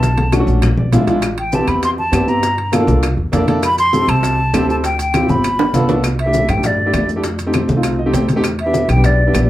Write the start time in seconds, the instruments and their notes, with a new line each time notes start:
Already playing: upright bass B1, flute A5
0.03 high bongo, high conga, high timbale, maracas
0.18 high conga, high timbale
0.32 grand piano A3 C#4 D4 F#4, high bongo, high conga, high timbale, low timbale, claves, maracas
0.40 grand piano A3 C#4 D4 F#4
0.47 upright bass A#1, high bongo, maracas
0.62 high bongo, low conga, high timbale, claves, maracas
0.77 upright bass A#1, grand piano D5, high bongo, low conga
0.92 upright bass A1, grand piano G#3 D4 E4 F4 E5, high bongo, low bongo, low conga, high timbale, low timbale, maracas
1.07 grand piano G#3 D4 E4 F4 G#5, high bongo, low conga, high timbale, maracas
1.22 high bongo, high conga, high timbale, claves, maracas
1.38 flute G5, high conga, high timbale
1.52 grand piano B3 C4 E4 G4, flute A5, high bongo, high conga, low timbale, maracas
1.60 grand piano B3 C4 E4 G4
1.67 upright bass E2, flute B5, high bongo, high conga, high timbale, claves, maracas
1.83 flute C6, high bongo, high conga, high timbale, maracas
1.98 flute A5, high bongo, high conga
2.12 upright bass G2, grand piano B3 C4 E4 G4, high bongo, low bongo, high conga, high timbale, low timbale, claves, maracas
2.26 grand piano B3 C4 E4 G4, flute A#5, high bongo, high conga, maracas
2.43 high bongo, high conga, high timbale, maracas
2.58 high conga, high timbale
2.72 grand piano A#3 D4 F4 A4, high bongo, high conga, high timbale, low timbale, claves, maracas
2.79 grand piano A#3 D4 F4 A4
2.87 upright bass C2, high bongo, high conga, maracas
3.03 high bongo, high conga, high timbale, claves, maracas
3.17 upright bass E2, high bongo, high conga
3.32 upright bass F2, grand piano A#3 D4 E4 A4, high bongo, low bongo, high conga, high timbale, low timbale, maracas
3.47 grand piano A#3 D4 E4 A4, high bongo, high conga, high timbale, maracas
3.63 flute B5, high bongo, high conga, high timbale, claves, maracas
3.78 flute C6, high conga, high timbale, maracas
3.92 grand piano C4 E4 G4 A4, high bongo, high conga, low timbale, maracas
4.01 grand piano C4 E4 G4 A4
4.08 upright bass C2, flute A5, high bongo, high conga, high timbale, claves, maracas
4.23 high bongo, high conga, high timbale, maracas
4.39 high bongo, high conga
4.53 upright bass D2, grand piano C4 E4 G4 A4, high bongo, low bongo, high conga, high timbale, low timbale, claves, maracas
4.68 grand piano C4 E4 G4 A4, flute A5, high bongo, high conga, maracas
4.84 flute G5, high bongo, high conga, high timbale, maracas
4.99 flute G5, high conga, high timbale, maracas
5.14 grand piano C4 E4 F4 G4, high bongo, high conga, high timbale, low timbale, claves, maracas
5.21 grand piano C4 E4 F4 G4
5.28 upright bass G1, flute B5, high bongo, high conga, maracas
5.44 high bongo, high conga, high timbale, claves, maracas
5.59 low bongo, high conga, high timbale
5.74 upright bass C2, grand piano B3 D4 F4 A4, low bongo, high conga, maracas
5.89 grand piano B3 D4 F4 A4, low bongo, high conga, low timbale, maracas
6.04 high bongo, high conga, high timbale, claves, maracas
6.19 flute E5, high conga, high timbale
6.26 grand piano A3 D4 E4 G4
6.33 high bongo, high conga, low timbale, maracas
6.48 upright bass G2, flute G5, high conga, low conga, high timbale, claves, maracas
6.57 grand piano A3 D4 E4 G4
6.63 flute D5, high bongo, high conga, low conga, high timbale, maracas
6.79 high bongo, high conga
6.86 grand piano A3 D4 E4 G4
6.93 upright bass F2, high bongo, low bongo, high conga, high timbale, low timbale, claves, maracas
7.09 high bongo, high conga, maracas
7.16 grand piano A3 D4 E4 G4
7.24 high bongo, high conga, high timbale, maracas
7.39 high conga, high timbale, maracas
7.47 grand piano A3 C4 D#4 G4
7.53 high bongo, high conga, high timbale, low timbale, claves, maracas
7.69 upright bass C2, high bongo, high conga, maracas
7.76 grand piano A3 C4 D#4 F4
7.83 high bongo, high conga, high timbale, claves, maracas
7.99 grand piano D#5, high bongo, high conga
8.06 grand piano A3 C4 D#4 G4
8.13 upright bass E2, grand piano G5, high bongo, low bongo, high conga, high timbale, low timbale, maracas
8.29 high bongo, high conga, high timbale, maracas
8.36 grand piano A3 C4 D#4 G4
8.44 high bongo, high conga, high timbale, claves, maracas
8.59 flute E5, high conga, high timbale
8.66 grand piano B3 D4 E4 G4
8.73 high bongo, high conga, low timbale, maracas
8.88 upright bass B1, flute G5, high bongo, high conga, low conga, high timbale, claves, maracas
8.96 grand piano B3 D4 E4 G4
9.04 flute D5, high bongo, high conga, low conga, high timbale, maracas
9.20 high bongo, high conga
9.27 grand piano B3 D4 E4 G4
9.34 upright bass A#1, high bongo, low bongo, high conga, high timbale, low timbale, claves, maracas